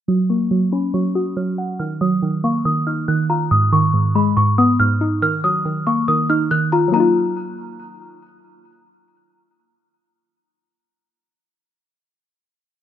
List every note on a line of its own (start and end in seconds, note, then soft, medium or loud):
0.08 0.50 F#3 loud
0.08 0.24 D#6 loud
0.30 1.37 A#3 medium
0.30 0.70 C#6 medium
0.51 0.93 F#3 medium
0.72 1.80 C#4 medium
0.72 0.89 B5 medium
0.94 1.35 F#3 medium
0.94 1.10 C#6 medium
1.15 1.80 F#4 medium
1.15 1.32 D#6 medium
1.37 1.80 F#3 medium
1.37 1.53 F6 medium
1.58 1.80 F#5 medium
1.80 2.21 D#3 medium
1.80 1.96 F6 loud
2.01 3.08 F#3 medium
2.01 2.41 D#6 medium
2.22 2.64 D#3 medium
2.44 3.51 A#3 medium
2.44 2.60 C#6 medium
2.65 3.07 D#3 medium
2.65 2.82 D#6 medium
2.87 3.51 D#4 medium
2.87 3.03 F6 medium
3.08 3.51 D#3 medium
3.08 3.24 F#6 medium
3.30 3.51 F4 medium
3.30 3.46 A#5 medium
3.51 3.93 G#2 loud
3.51 3.67 D#6 medium
3.73 4.80 D#3 medium
3.73 4.13 C#6 medium
3.94 4.36 G#2 medium
4.15 5.22 G#3 medium
4.15 4.32 B5 medium
4.37 4.78 G#2 medium
4.37 4.53 C#6 medium
4.58 5.22 B3 medium
4.58 4.74 D#6 medium
4.80 5.22 G#2 medium
4.80 4.96 F6 medium
5.01 5.22 D#4 medium
5.22 5.64 D#3 loud
5.22 5.39 F6 medium
5.44 6.51 F#3 medium
5.44 5.84 D#6 medium
5.65 6.07 D#3 medium
5.87 6.91 A#3 medium
5.87 6.03 C#6 medium
6.08 6.50 D#3 medium
6.08 6.24 D#6 medium
6.30 6.94 D#4 medium
6.30 6.46 F6 medium
6.51 6.94 D#3 medium
6.51 6.67 F#6 medium
6.72 6.94 F4 medium
6.72 6.89 A#5 medium
6.88 10.23 F#3 medium
6.92 10.27 A#3 medium
6.92 10.31 D#4 medium
6.92 8.18 A#5 medium
7.00 10.35 F4 medium